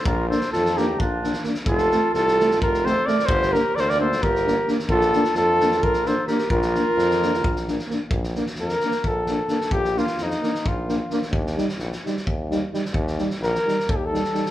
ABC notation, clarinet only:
X:1
M:7/8
L:1/16
Q:1/4=130
K:Bb
V:1 name="Clarinet"
F2 A2 F2 E2 D3- D/2 z2 z/2 | F4 F4 F2 A2 B2 | G2 G2 B/2 A/2 B A2 G4- G/2 z3/2 | F4 F4 F2 A2 G2 |
F12 z2 | z12 z2 | z12 z2 | z12 z2 |
z12 z2 |]